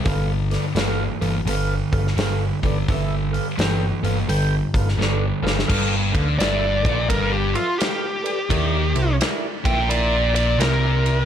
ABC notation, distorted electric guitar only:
X:1
M:4/4
L:1/8
Q:"Swing" 1/4=85
K:Gmix
V:1 name="Distorted electric guitar" clef=bass
[G,,D,]2 [G,,E,] [G,,E,] [G,,D,]2 [G,,D,] [G,,D,] | [G,,D,]2 [G,,E,] [G,,E,] [G,,D,]2 [G,,D,] [G,,D,] | G,, D, G,, _B,, G,, z3 | _E, C, z _B,,3 C,2 |]